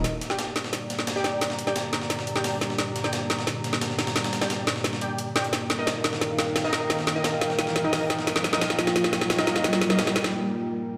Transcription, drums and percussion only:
0.04 snare soft
0.04 closed hi-hat loud
0.04 closed hi-hat medium
0.21 snare soft
0.21 closed hi-hat medium
0.30 snare soft
0.39 snare loud
0.39 closed hi-hat medium
0.56 snare soft
0.56 closed hi-hat medium
0.64 snare medium
0.73 snare soft
0.73 closed hi-hat medium
0.90 snare soft
0.90 closed hi-hat medium
0.99 snare soft
1.07 snare loud
1.07 closed hi-hat medium
1.16 snare soft
1.24 snare soft
1.24 snare medium
1.24 closed hi-hat medium
1.41 snare medium
1.41 closed hi-hat medium
1.50 snare medium
1.59 closed hi-hat medium
1.67 snare soft
1.76 snare loud
1.76 closed hi-hat medium
1.93 snare medium
1.93 closed hi-hat medium
2.02 snare soft
2.10 snare medium
2.10 closed hi-hat medium
2.19 snare medium
2.27 closed hi-hat medium
2.36 snare soft
2.44 snare loud
2.44 closed hi-hat medium
2.44 open hi-hat medium
2.61 snare medium
2.61 closed hi-hat medium
2.70 snare soft
2.79 snare medium
2.79 closed hi-hat medium
2.96 snare soft
2.96 closed hi-hat medium
3.04 snare medium
3.13 snare loud
3.13 closed hi-hat medium
3.30 snare medium
3.30 closed hi-hat medium
3.39 snare medium
3.47 snare medium
3.47 closed hi-hat medium
3.64 snare soft
3.64 closed hi-hat medium
3.73 snare medium
3.81 snare loud
3.81 closed hi-hat medium
3.90 snare soft
3.99 snare medium
3.99 snare loud
3.99 closed hi-hat medium
4.07 snare loud
4.07 closed hi-hat medium
4.16 snare medium
4.16 snare loud
4.16 closed hi-hat medium
4.24 snare loud
4.24 closed hi-hat medium
4.33 snare loud
4.33 closed hi-hat medium
4.41 snare medium
4.41 snare loud
4.41 closed hi-hat medium
4.50 snare loud
4.50 closed hi-hat medium
4.67 snare medium
4.67 closed hi-hat medium
4.76 snare medium
4.84 snare medium
4.84 closed hi-hat medium
4.93 snare medium
5.01 closed hi-hat medium
5.18 closed hi-hat medium
5.36 snare medium
5.36 snare soft
5.36 closed hi-hat medium
5.44 closed hi-hat medium
5.53 snare medium
5.53 closed hi-hat medium
5.70 snare medium
5.70 snare soft
5.70 closed hi-hat medium
5.87 snare medium
5.87 snare loud
5.87 closed hi-hat medium
6.04 snare medium
6.04 closed hi-hat medium
6.13 snare medium
6.21 snare medium
6.21 closed hi-hat medium
6.39 snare medium
6.39 snare soft
6.39 closed hi-hat medium
6.56 snare medium
6.56 snare loud
6.56 closed hi-hat medium
6.64 snare soft
6.73 snare medium
6.73 closed hi-hat medium
6.90 snare medium
6.90 closed hi-hat medium
6.99 snare medium
7.07 snare medium
7.07 closed hi-hat medium
7.24 snare medium
7.24 snare loud
7.24 closed hi-hat medium
7.41 snare medium
7.41 closed hi-hat medium
7.50 snare medium
7.59 snare medium
7.59 closed hi-hat medium
7.67 snare medium
7.76 snare medium
7.76 closed hi-hat medium
7.93 snare loud
7.93 snare medium
7.93 closed hi-hat medium
7.93 open hi-hat medium
8.10 snare medium
8.10 closed hi-hat medium
8.19 snare medium
8.27 snare medium
8.27 closed hi-hat loud
8.27 closed hi-hat medium
8.36 snare medium
8.44 snare medium
8.44 snare soft
8.44 closed hi-hat medium
8.53 snare medium
8.61 snare medium
8.61 snare loud
8.61 closed hi-hat loud
8.61 closed hi-hat medium
8.70 snare medium
8.79 snare medium
8.79 closed hi-hat medium
8.87 snare medium
8.96 snare medium
8.96 closed hi-hat loud
8.96 closed hi-hat medium
9.04 snare medium
9.13 snare loud
9.13 snare soft
9.13 closed hi-hat medium
9.21 snare medium
9.30 snare loud
9.30 closed hi-hat loud
9.30 closed hi-hat medium
9.39 snare medium
9.39 snare soft
9.47 snare loud
9.47 snare medium
9.47 closed hi-hat medium
9.56 snare medium
9.64 snare loud
9.64 closed hi-hat loud
9.64 closed hi-hat medium
9.73 snare loud
9.73 snare medium
9.81 snare loud
9.81 closed hi-hat medium
9.90 snare medium
9.99 snare loud
9.99 closed hi-hat medium
9.99 closed hi-hat loud
10.07 snare medium
10.16 snare loud
10.16 closed hi-hat medium
10.24 snare medium

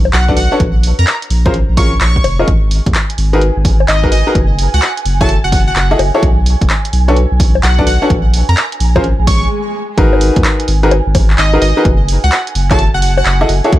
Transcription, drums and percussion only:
0.05 high bongo medium
0.13 clap loud
0.13 closed hi-hat medium
0.28 kick medium
0.37 open hi-hat medium
0.60 kick loud
0.60 cross-stick soft
0.60 closed hi-hat medium
0.83 open hi-hat loud
0.99 closed hi-hat medium
1.07 clap loud
1.07 closed hi-hat medium
1.22 closed hi-hat medium
1.30 open hi-hat medium
1.46 kick loud
1.46 cross-stick medium
1.46 closed hi-hat soft
1.54 closed hi-hat medium
1.77 kick loud
1.77 open hi-hat loud
2.01 clap loud
2.01 closed hi-hat medium
2.16 kick medium
2.24 open hi-hat medium
2.24 high bongo medium
2.39 high bongo medium
2.48 kick loud
2.48 cross-stick soft
2.48 closed hi-hat medium
2.71 open hi-hat loud
2.86 kick loud
2.86 closed hi-hat medium
2.95 clap loud
2.95 closed hi-hat medium
3.10 closed hi-hat medium
3.18 open hi-hat medium
3.33 cross-stick medium
3.33 closed hi-hat soft
3.41 closed hi-hat medium
3.65 kick loud
3.65 open hi-hat loud
3.80 high bongo medium
3.88 clap loud
3.88 closed hi-hat medium
4.04 kick medium
4.12 open hi-hat medium
4.35 kick loud
4.35 cross-stick soft
4.35 closed hi-hat medium
4.59 open hi-hat loud
4.74 closed hi-hat medium
4.82 clap loud
4.82 closed hi-hat medium
4.97 closed hi-hat medium
5.05 open hi-hat medium
5.21 kick loud
5.21 cross-stick medium
5.21 closed hi-hat soft
5.29 closed hi-hat medium
5.52 kick loud
5.52 open hi-hat loud
5.76 clap loud
5.76 closed hi-hat medium
5.99 open hi-hat medium
5.99 high bongo medium
6.15 high bongo medium
6.23 kick loud
6.23 cross-stick soft
6.23 closed hi-hat medium
6.46 open hi-hat loud
6.61 kick loud
6.61 closed hi-hat medium
6.70 clap loud
6.70 closed hi-hat medium
6.85 closed hi-hat medium
6.93 open hi-hat medium
7.08 cross-stick medium
7.08 closed hi-hat soft
7.16 closed hi-hat medium
7.40 kick loud
7.40 open hi-hat loud
7.55 high bongo medium
7.63 clap loud
7.63 closed hi-hat medium
7.79 kick medium
7.87 open hi-hat medium
8.10 kick loud
8.10 cross-stick soft
8.10 closed hi-hat medium
8.34 open hi-hat loud
8.49 closed hi-hat medium
8.57 clap loud
8.57 closed hi-hat medium
8.72 closed hi-hat medium
8.80 open hi-hat medium
8.96 kick loud
8.96 cross-stick medium
8.96 closed hi-hat soft
8.96 high bongo medium
9.04 closed hi-hat medium
9.27 kick loud
9.27 open hi-hat loud
9.98 kick loud
9.98 cross-stick soft
9.98 closed hi-hat medium
10.13 high bongo medium
10.21 open hi-hat loud
10.36 kick loud
10.36 closed hi-hat medium
10.44 clap loud
10.44 closed hi-hat medium
10.60 closed hi-hat medium
10.68 open hi-hat medium
10.83 cross-stick medium
10.83 closed hi-hat soft
10.91 closed hi-hat medium
10.91 high bongo medium
11.15 kick loud
11.15 open hi-hat loud
11.15 high bongo medium
11.30 clap medium
11.38 clap loud
11.38 closed hi-hat medium
11.62 open hi-hat loud
11.85 kick loud
11.85 cross-stick soft
11.85 closed hi-hat medium
12.08 open hi-hat loud
12.24 closed hi-hat medium
12.32 clap loud
12.32 closed hi-hat medium
12.47 closed hi-hat medium
12.55 open hi-hat medium
12.71 kick loud
12.71 cross-stick medium
12.71 clap medium
12.71 closed hi-hat soft
12.79 closed hi-hat medium
13.02 open hi-hat loud
13.17 high bongo medium
13.26 clap loud
13.26 closed hi-hat medium
13.49 open hi-hat medium
13.64 closed hi-hat soft
13.73 kick loud
13.73 cross-stick soft
13.73 closed hi-hat medium

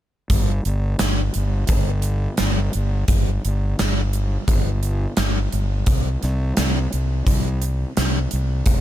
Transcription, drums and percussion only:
0.30 kick loud
0.30 closed hi-hat medium
0.65 closed hi-hat medium
0.99 snare loud
0.99 closed hi-hat medium
1.34 closed hi-hat medium
1.67 kick loud
1.67 closed hi-hat medium
2.02 closed hi-hat medium
2.37 snare loud
2.37 closed hi-hat medium
2.73 closed hi-hat medium
3.08 kick loud
3.08 closed hi-hat loud
3.45 closed hi-hat medium
3.79 snare loud
3.79 closed hi-hat medium
4.13 closed hi-hat medium
4.48 kick loud
4.48 closed hi-hat medium
4.83 closed hi-hat medium
5.17 snare loud
5.17 closed hi-hat medium
5.52 closed hi-hat medium
5.86 kick loud
5.86 closed hi-hat medium
6.23 snare soft
6.23 closed hi-hat medium
6.57 snare loud
6.57 closed hi-hat medium
6.93 closed hi-hat medium
7.27 kick loud
7.27 closed hi-hat loud
7.62 closed hi-hat medium
7.97 snare loud
7.97 closed hi-hat medium
8.31 closed hi-hat medium
8.66 kick loud
8.66 closed hi-hat medium

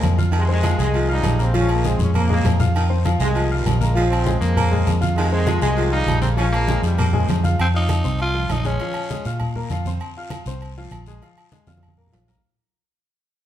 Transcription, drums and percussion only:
0.03 high conga medium
0.03 low timbale medium
0.03 low agogo medium
0.03 short guiro medium
0.19 high conga medium
0.19 short guiro medium
0.33 low agogo loud
0.33 long guiro medium
0.49 high conga soft
0.63 high conga loud
0.63 low agogo loud
0.63 short guiro medium
0.78 high conga soft
0.78 short guiro medium
0.94 high conga soft
0.94 low agogo medium
0.94 long guiro medium
1.23 high conga medium
1.23 low timbale medium
1.23 low agogo loud
1.23 short guiro medium
1.40 short guiro medium
1.54 high conga medium
1.54 low agogo medium
1.54 long guiro medium
1.69 low agogo loud
1.84 high conga medium
1.84 short guiro medium
1.99 low conga medium
1.99 short guiro medium
2.14 low conga medium
2.14 low agogo loud
2.14 long guiro medium
2.30 low conga medium
2.45 low conga loud
2.45 low timbale medium
2.45 low agogo medium
2.45 short guiro medium
2.60 low conga loud
2.60 short guiro medium
2.75 high conga soft
2.75 low agogo loud
2.75 long guiro medium
2.91 high conga soft
3.05 high conga loud
3.05 low agogo loud
3.05 short guiro medium
3.20 high conga soft
3.20 short guiro medium
3.35 high conga soft
3.35 low agogo medium
3.35 long guiro medium
3.52 high conga soft
3.66 high conga medium
3.66 low timbale medium
3.66 low agogo loud
3.66 short guiro medium
3.81 high conga medium
3.81 short guiro medium
3.97 high conga soft
3.97 low agogo medium
3.97 long guiro medium
4.12 high conga soft
4.12 low agogo loud
4.26 high conga loud
4.26 short guiro medium
4.42 high conga soft
4.42 short guiro medium
4.57 high conga soft
4.57 low conga medium
4.57 low agogo loud
4.57 long guiro medium
4.73 high conga soft
4.73 low conga medium
4.87 high conga medium
4.87 low agogo medium
4.87 short guiro medium
5.02 high conga medium
5.02 short guiro medium
5.16 high conga soft
5.16 low agogo loud
5.16 long guiro medium
5.33 high conga soft
5.47 high conga loud
5.47 low agogo loud
5.47 short guiro medium
5.62 high conga soft
5.62 short guiro medium
5.77 high conga soft
5.77 low agogo medium
5.77 long guiro medium
5.93 high conga soft
6.08 high conga loud
6.08 low agogo loud
6.08 short guiro medium
6.22 high conga medium
6.22 short guiro medium
6.37 high conga soft
6.37 low agogo medium
6.37 long guiro medium
6.53 high conga soft
6.53 low agogo loud
6.68 high conga loud
6.68 short guiro medium
6.83 high conga soft
6.83 short guiro medium
6.99 high conga soft
6.99 low conga medium
6.99 low agogo loud
6.99 long guiro medium
7.13 high conga soft
7.13 low conga medium
7.29 high conga medium
7.29 low timbale medium
7.29 low agogo medium
7.29 short guiro medium
7.44 high conga medium
7.44 short guiro medium
7.59 high conga soft
7.59 low agogo loud
7.59 long guiro medium
7.75 high conga soft
7.89 high conga loud
7.89 low agogo loud
7.89 short guiro medium
8.04 high conga soft
8.04 short guiro medium
8.19 high conga soft
8.19 low agogo medium
8.19 long guiro medium
8.50 high conga medium
8.50 low timbale medium
8.50 low agogo loud
8.50 short guiro medium
8.65 high conga medium
8.65 short guiro medium
8.80 low agogo medium
8.80 long guiro medium
8.94 high conga soft
8.94 low agogo loud
9.10 high conga loud
9.10 short guiro medium
9.25 high conga soft
9.25 short guiro medium
9.40 high conga soft
9.40 low conga medium
9.40 low agogo loud
9.40 long guiro medium
9.56 high conga soft
9.56 low conga medium
9.70 high conga medium
9.70 low agogo medium
9.70 short guiro medium
9.85 high conga medium
9.85 short guiro medium
10.00 high conga soft
10.00 low agogo loud
10.00 long guiro medium
10.16 high conga soft
10.30 high conga loud
10.30 low agogo loud
10.30 short guiro medium
10.46 high conga soft
10.46 short guiro medium
10.61 high conga soft
10.61 low agogo medium
10.61 long guiro medium
10.77 high conga soft
10.91 high conga loud
10.91 low agogo loud
10.91 short guiro medium
11.06 high conga medium
11.06 short guiro medium
11.22 low agogo medium
11.22 long guiro medium
11.36 high conga soft
11.36 low agogo loud
11.52 high conga loud
11.52 short guiro medium
11.67 high conga loud
11.67 high timbale medium
11.67 short guiro medium
11.77 high conga loud
11.83 low agogo medium
11.83 long guiro medium
11.88 high conga loud
11.97 low conga medium
12.07 low conga medium
12.13 low timbale loud
12.13 low agogo medium
12.13 short guiro medium
12.28 low conga medium
12.28 low timbale medium
12.28 short guiro medium
12.38 low conga medium

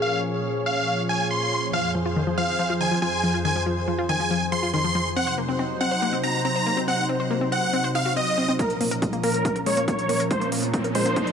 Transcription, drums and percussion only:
8.59 kick loud
8.59 closed hi-hat medium
8.70 closed hi-hat soft
8.81 open hi-hat medium
8.91 closed hi-hat soft
9.02 kick loud
9.02 closed hi-hat soft
9.13 closed hi-hat soft
9.23 open hi-hat loud
9.34 closed hi-hat soft
9.45 kick loud
9.45 closed hi-hat medium
9.56 closed hi-hat soft
9.66 open hi-hat medium
9.77 closed hi-hat medium
9.88 kick loud
9.88 closed hi-hat medium
9.99 closed hi-hat soft
10.09 open hi-hat loud
10.20 closed hi-hat medium
10.31 kick loud
10.31 closed hi-hat soft
10.41 closed hi-hat soft
10.52 open hi-hat loud
10.63 closed hi-hat soft
10.74 kick loud
10.74 closed hi-hat soft
10.84 closed hi-hat soft
10.95 open hi-hat loud
11.06 closed hi-hat soft
11.16 kick loud
11.16 closed hi-hat soft
11.27 closed hi-hat soft

